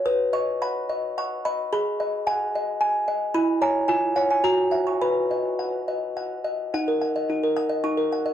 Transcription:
\new Staff \with { instrumentName = "Music box" } { \time 3/4 \key b \major \tempo 4 = 108 << { dis'''8 cis'''8 b''4 cis'''8 b''8 | b''4 fis''4 gis''4 | b''8 ais''8 gis''8 fis''16 gis''16 ais''8. cis'''16 | b''2~ b''8 r8 |
fis''4. dis'''8 cis'''4 | } \\ { b'8 dis''8 fis''8 dis''8 fis''8 dis''8 | gis'8 dis''8 gis''8 dis''8. r16 dis''8 | e'8 <cis'' gis''>8 eis'8 <cis'' gis''>8 fis'8 <e'' fis''>8 | b'8 dis''8 fis''8 dis''8 fis''8 dis''8 |
dis'16 ais'16 fis''16 dis''16 dis'16 ais'16 fis''16 dis''16 dis'16 ais'16 fis''16 dis''16 | } >> }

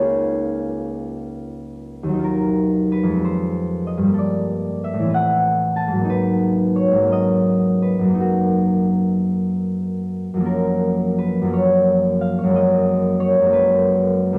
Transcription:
<<
  \new Staff \with { instrumentName = "Harp" } { \time 6/8 \key fis \major \tempo 4. = 58 <gis' b' cis'' dis''>2. | ais'4 b'8 c''4 dis''8 | d''4 e''8 fis''4 a''8 | b'4 cis''8 dis''4 b'8 |
fis'2. | ais'4 b'8 cis''4 eis''16 cis''16 | dis''4 cis''8 b'4. | }
  \new Staff \with { instrumentName = "Harp" } { \time 6/8 \key fis \major <cis, gis ais cis' dis' eis'>2. | <dis, fis dis' eis'>4. <f, aes c' g'>4. | <g, g bes a'>4. <a, e c' b'>4. | <gis, fis ais dis'>4. <gis, fis ais cis'>4. |
<fis, fis ais dis'>2. | <fis, eis ais cis'>4. <fis, eis ais cis'>4. | <fis, gis ais cis'>4. <fis, gis ais cis'>4. | }
>>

